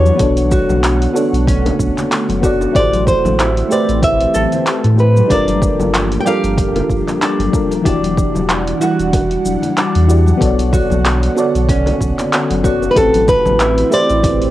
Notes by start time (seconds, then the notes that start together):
Already playing: E2 E3 G3 D4 E4 F#4 G4 C#5 D5 F#5
0.05 high conga, shaker
0.16 B1 B3 F#4, open hi-hat
0.20 D3 A3 D4 A4 C#5, kick, shaker
0.37 open hi-hat, shaker
0.52 F#4, kick, shaker
0.69 B1, high conga, low conga, shaker
0.84 clap, open hi-hat, shaker
1.02 open hi-hat
1.13 B3 D4 F#4 A4 C#5, high bongo, shaker
1.33 B1, open hi-hat, shaker
1.47 C#4, kick, open hi-hat, shaker
1.65 open hi-hat, high bongo, low conga
1.79 B1, kick, shaker
1.98 clap, open hi-hat, low conga, shaker
2.12 clap, open hi-hat, shaker
2.29 F#1, open hi-hat, high conga
2.41 B3 F#4 A4 C#5 D5, kick, shaker
2.61 high bongo, shaker
2.71 A1 E3 A3 C4 E4 G4, kick
2.76 A4 C5 D5, open hi-hat, shaker
2.93 open hi-hat, high conga, shaker
3.07 C5, kick, shaker
3.25 A1, high conga, low conga, shaker
3.38 E4, clap, open hi-hat, shaker
3.57 open hi-hat
3.69 A3 E4 G4 B4 C5 D5, high bongo, shaker
3.88 A1, open hi-hat, shaker
4.03 E5, kick, open hi-hat, high bongo, shaker
4.20 open hi-hat
4.34 A1 A4, high conga, shaker
4.52 open hi-hat, low conga, shaker
4.67 clap, open hi-hat, shaker
4.84 A2, open hi-hat
4.96 A3 E4 G4 B4, shaker
5.00 C5
5.17 high conga, shaker
5.26 G3 D4
5.30 G1 F3 A#3 D4 F4 A4 A#4 D5, kick, open hi-hat, shaker
5.48 open hi-hat, high conga, shaker
5.62 kick, shaker
5.79 G1, high conga, low conga, shaker
5.94 clap, open hi-hat, shaker
6.12 open hi-hat
6.20 G3 G5
6.25 D4 F4 G4 A4 A#4 F5, high bongo, shaker
6.43 G1, open hi-hat, shaker
6.58 kick, open hi-hat, shaker
6.76 open hi-hat, high bongo, low conga
6.90 G1, kick, shaker
7.07 clap, open hi-hat, low conga, shaker
7.21 D4, clap, open hi-hat, shaker
7.39 G1, open hi-hat, high conga
7.51 G3 D4 F4 A4 A#4, kick, shaker
7.71 open hi-hat, high bongo, shaker
7.82 E1 E3 G3 D4 E4 F#4 F#5, kick
7.86 G4 D5, open hi-hat, shaker
8.03 open hi-hat, high conga, shaker
8.17 kick, shaker
8.35 E1, high conga, low conga, shaker
8.50 clap, open hi-hat, shaker
8.68 open hi-hat
8.80 E3 G3 E4 F#4 F#5, high bongo, shaker
8.99 E1, open hi-hat, shaker
9.13 kick, open hi-hat, high bongo, shaker
9.31 open hi-hat
9.45 E1, high conga, shaker
9.62 open hi-hat, low conga, shaker
9.77 D4, clap, open hi-hat, shaker
9.95 E2, open hi-hat
10.07 E3 E4 F#4 G4 D5, shaker
10.27 high conga, shaker
10.37 B1 D3 B3 F#4 A4, kick
10.42 C#5 D5, open hi-hat, shaker
10.59 open hi-hat, shaker
10.73 F#4, kick, shaker
10.90 B1, high conga, low conga, shaker
11.05 clap, open hi-hat, shaker
11.23 open hi-hat
11.35 B3 F#4 A4 C#5 D5, high bongo, shaker
11.55 B1, open hi-hat, shaker
11.68 C#4, kick, open hi-hat, shaker
11.86 open hi-hat, high bongo, low conga
12.00 B1, kick, shaker
12.18 clap, open hi-hat, low conga, shaker
12.33 clap, open hi-hat, shaker
12.50 F#1, open hi-hat, high conga
12.63 B3 F#4 A4 C#5 D5, kick, shaker
12.82 high bongo, shaker
12.91 A3 E4 B4
12.96 A1 E3 C4 G4 A4 B4, kick, open hi-hat, shaker
13.00 C4
13.14 open hi-hat, high conga, shaker
13.28 B4, kick, shaker
13.45 A1, high conga, low conga, shaker
13.60 E4, clap, open hi-hat, shaker
13.78 open hi-hat
13.90 A3 E4 G4 B4 C5 D5, high bongo, shaker
14.10 A1, open hi-hat, shaker
14.23 kick, open hi-hat, high bongo, shaker
14.42 open hi-hat